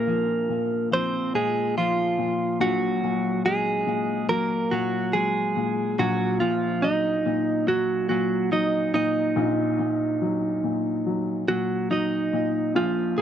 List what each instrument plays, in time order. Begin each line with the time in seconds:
Already playing: upright piano A#1 A#2, clean electric guitar A#3 A#4
0.07 upright piano F3
0.49 upright piano A#2
0.91 upright piano F3, clean electric guitar C4 C5
1.34 upright piano A#2, clean electric guitar G#3 G#4
1.77 upright piano F3, clean electric guitar F3 F4
2.19 upright piano A#2
2.60 upright piano A#1 A#2, clean electric guitar F#3 F#4
3.03 upright piano A#2
3.45 upright piano F#3, clean electric guitar G#3 G#4
3.87 upright piano A#2
4.29 upright piano F#3, clean electric guitar A#3 A#4
4.71 upright piano A#2, clean electric guitar F#3 F#4
5.13 upright piano F#3, clean electric guitar G#3 G#4
5.57 upright piano A#2
5.99 upright piano A#1 A#2, clean electric guitar F#3 F#4
6.40 upright piano A#2, clean electric guitar F3 F4
6.82 upright piano F#3, clean electric guitar D#4 D#5
7.26 upright piano A#2
7.67 upright piano F#3, clean electric guitar F#3 F#4
8.09 upright piano A#2, clean electric guitar F#3 F#4
8.52 upright piano F#3, clean electric guitar D#4 D#5
8.94 upright piano A#2, clean electric guitar D#4 D#5
9.36 upright piano A#1 A#2
9.79 upright piano A#2
10.22 upright piano F#3
10.64 upright piano A#2
11.06 upright piano F#3
11.48 upright piano A#2, clean electric guitar F#3 F#4
11.90 upright piano F#3, clean electric guitar D#4 D#5
12.33 upright piano A#2
12.75 upright piano A#1 A#2, clean electric guitar F3 F4
13.18 upright piano A#2, clean electric guitar A#4